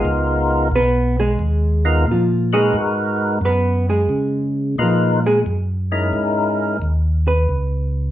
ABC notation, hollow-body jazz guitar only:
X:1
M:4/4
L:1/8
Q:"Swing" 1/4=89
K:Dbmix
V:1 name="Hollow-body jazz guitar"
z2 [Cc] [A,A]3 [F,F] [A,A] | z2 [Cc] [A,A]3 [F,F] [A,A] | z4 z c3 |]